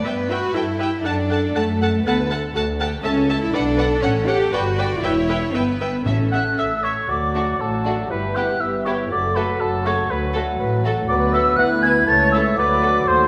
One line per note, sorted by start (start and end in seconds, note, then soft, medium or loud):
0.03 0.48 G2 medium
0.03 0.29 B3 medium
0.03 0.12 B4 soft
0.03 0.54 B4 medium
0.03 0.12 E5 soft
0.03 0.13 G5 soft
0.29 0.54 F#4 medium
0.29 0.38 B4 soft
0.29 0.38 E5 soft
0.29 0.38 G5 soft
0.54 0.98 G2 medium
0.54 1.05 E4 medium
0.54 0.80 A4 medium
0.54 0.62 B4 soft
0.54 0.62 E5 soft
0.54 0.63 G5 soft
0.79 0.88 G4 soft
0.79 0.87 B4 soft
0.79 0.87 E5 soft
0.79 0.90 G5 medium
1.04 1.49 F#2 medium
1.04 1.55 D4 medium
1.04 1.12 A4 medium
1.04 2.03 A4 medium
1.04 1.12 F#5 medium
1.04 1.13 A5 medium
1.29 1.38 A4 soft
1.29 1.37 F#5 soft
1.29 1.39 A5 soft
1.55 1.99 F#2 medium
1.55 2.05 A3 medium
1.55 1.63 A4 medium
1.55 1.63 F#5 medium
1.55 1.64 A5 medium
1.81 1.89 A4 soft
1.81 1.89 F#5 medium
1.81 1.91 A5 medium
2.04 2.48 D2 medium
2.04 2.13 B3 medium
2.04 2.14 A4 medium
2.04 2.29 B4 medium
2.04 2.14 F#5 medium
2.04 2.15 A5 medium
2.29 2.54 A4 medium
2.29 2.39 A4 medium
2.29 2.39 F#5 medium
2.29 2.39 A5 medium
2.54 2.97 D2 medium
2.54 2.62 F#4 medium
2.54 2.64 A4 medium
2.54 2.64 F#5 medium
2.54 2.63 A5 medium
2.79 3.03 G4 medium
2.79 2.88 A4 medium
2.79 2.88 F#5 medium
2.79 2.88 A5 medium
3.03 3.46 C#2 medium
3.03 3.37 C#4 medium
3.03 4.49 A4 medium
3.03 3.11 A4 medium
3.03 3.11 E5 medium
3.03 3.12 A5 medium
3.29 3.37 A4 medium
3.29 3.37 E5 medium
3.29 3.37 A5 medium
3.41 3.52 E4 medium
3.52 3.96 B1 medium
3.52 4.02 D4 medium
3.52 3.61 B4 medium
3.52 3.61 D5 medium
3.52 3.62 F#5 medium
3.77 3.85 B4 medium
3.77 3.85 D5 medium
3.77 3.86 F#5 medium
4.01 4.46 A1 medium
4.01 4.27 C#4 medium
4.01 4.10 C#5 medium
4.01 4.10 F#5 medium
4.27 4.52 G4 medium
4.27 4.36 C#5 medium
4.27 4.35 F#5 medium
4.27 4.36 F#5 medium
4.52 4.96 G1 medium
4.52 5.02 F#4 medium
4.52 4.61 B4 medium
4.52 4.78 B4 medium
4.52 4.60 D5 medium
4.52 4.61 G5 medium
4.78 4.86 B4 medium
4.78 5.02 D5 medium
4.78 4.86 D5 medium
4.78 4.86 G5 medium
5.02 5.48 E1 medium
5.02 5.53 E4 medium
5.02 5.11 B4 medium
5.02 5.54 C#5 medium
5.02 5.11 E5 medium
5.02 5.12 G5 medium
5.28 5.37 B4 medium
5.28 5.36 E5 soft
5.28 5.38 G5 soft
5.53 6.00 G1 medium
5.53 6.06 B3 medium
5.53 6.06 B4 medium
5.53 5.62 B4 soft
5.53 5.62 E5 soft
5.53 5.63 G5 medium
5.80 5.88 B4 soft
5.80 5.88 E5 soft
5.80 5.89 G5 soft
6.05 6.52 A1 medium
6.05 6.80 A2 medium
6.05 6.56 C#4 medium
6.05 6.82 A4 soft
6.05 6.15 A4 soft
6.05 6.14 E5 soft
6.05 6.14 E5 medium
6.31 6.41 A4 soft
6.31 6.41 E5 soft
6.31 6.44 F#5 medium
6.31 6.60 F#6 medium
6.57 7.04 A1 medium
6.57 6.66 A4 soft
6.57 6.65 E5 soft
6.57 6.85 E5 soft
6.57 6.66 E5 soft
6.57 6.85 E6 medium
6.83 6.92 A4 soft
6.83 7.11 C#5 soft
6.83 6.92 E5 soft
6.83 7.12 C#6 medium
7.08 7.52 D2 soft
7.08 7.56 F#3 soft
7.08 7.56 A3 soft
7.08 7.56 F#4 soft
7.08 8.07 F#4 soft
7.08 7.57 A4 soft
7.08 7.62 D5 soft
7.08 7.62 D6 medium
7.34 7.46 A3 soft
7.34 7.47 D4 soft
7.34 7.47 F#4 soft
7.59 8.02 A1 soft
7.59 8.02 A2 soft
7.59 8.12 F#3 soft
7.59 8.09 A3 soft
7.59 8.09 F#4 soft
7.59 8.10 A4 soft
7.59 8.12 A4 soft
7.59 8.09 A5 soft
7.85 7.97 A3 soft
7.85 7.97 D4 soft
7.85 7.97 F#4 soft
8.09 8.52 G1 soft
8.09 8.52 G2 soft
8.09 8.59 E3 soft
8.09 8.58 B3 soft
8.09 8.59 E4 soft
8.09 9.09 G4 soft
8.09 8.37 B4 soft
8.09 8.60 B4 soft
8.09 8.37 B5 soft
8.35 8.47 B3 soft
8.35 8.47 E4 soft
8.35 8.47 G4 soft
8.35 8.62 F#5 soft
8.35 8.62 F#6 medium
8.59 9.02 G1 soft
8.59 9.03 G2 soft
8.59 9.13 E3 soft
8.59 9.09 B3 soft
8.59 9.10 E4 soft
8.59 9.12 B4 soft
8.59 8.88 E5 soft
8.59 8.83 E6 soft
8.84 8.97 B3 soft
8.84 8.98 E4 soft
8.84 8.98 G4 soft
8.84 9.10 C#5 soft
8.84 8.90 C#6 medium
9.10 9.52 F#1 soft
9.10 9.52 F#2 soft
9.10 9.60 F#3 soft
9.10 9.58 A3 soft
9.10 9.58 F#4 soft
9.10 9.61 A4 soft
9.10 10.08 A4 soft
9.10 9.38 D5 soft
9.10 9.36 D6 medium
9.34 9.47 A3 soft
9.34 9.47 F#4 soft
9.34 9.47 A4 soft
9.34 9.61 B4 soft
9.34 9.62 B5 medium
9.59 10.01 F#1 soft
9.59 10.02 F#2 soft
9.59 10.09 F#3 soft
9.59 10.08 A3 soft
9.59 10.08 F#4 soft
9.59 9.88 A4 soft
9.59 10.08 A4 soft
9.59 9.84 A5 medium
9.85 9.97 A3 soft
9.85 9.97 F#4 soft
9.85 9.97 A4 soft
9.85 10.12 C#5 soft
9.85 10.12 C#6 medium
10.09 10.51 D2 medium
10.09 11.07 F#3 soft
10.09 11.07 A3 soft
10.09 11.08 F#4 soft
10.09 11.06 A4 soft
10.09 10.35 B4 soft
10.09 10.18 B4 soft
10.09 10.35 B5 medium
10.33 10.46 A3 soft
10.33 10.46 F#4 soft
10.33 10.45 A4 soft
10.33 10.42 A4 soft
10.59 11.01 A1 medium
10.59 11.01 A2 medium
10.59 10.83 B4 soft
10.84 10.96 A3 soft
10.84 10.96 F#4 soft
10.84 10.96 A4 soft
10.84 10.93 A4 soft
11.08 11.50 D2 medium
11.08 11.60 F#3 medium
11.08 12.04 B3 medium
11.08 11.55 F#4 soft
11.08 11.57 B4 medium
11.08 12.04 B4 medium
11.08 11.35 D5 medium
11.08 11.14 D6 medium
11.33 11.42 B3 soft
11.33 11.42 F#4 soft
11.33 11.42 A4 soft
11.33 11.58 E5 medium
11.33 11.57 E6 medium
11.56 11.99 D2 medium
11.56 12.00 D2 medium
11.56 12.59 E3 medium
11.56 12.57 E4 soft
11.56 12.07 B4 medium
11.56 11.70 F#5 medium
11.56 11.84 F#6 medium
11.82 11.92 B3 soft
11.82 11.92 E4 soft
11.82 11.91 B4 soft
11.82 11.93 G#5 medium
11.82 12.09 G#6 medium
12.06 12.49 C#2 medium
12.06 13.28 A3 medium
12.06 13.28 A4 medium
12.06 12.57 C#5 medium
12.06 12.35 A5 medium
12.06 12.31 A6 medium
12.31 12.42 C#4 soft
12.31 12.42 E4 soft
12.31 12.42 A4 soft
12.31 12.57 E5 medium
12.31 12.37 E6 medium
12.56 12.99 D2 medium
12.56 13.28 F#3 medium
12.56 13.28 F#4 medium
12.56 13.08 B4 medium
12.56 13.09 D5 medium
12.56 13.09 D6 medium
12.82 12.91 B3 soft
12.82 12.90 F#4 soft
12.82 12.90 A4 soft
13.07 13.28 D#2 medium
13.07 13.28 C5 medium
13.07 13.28 C6 medium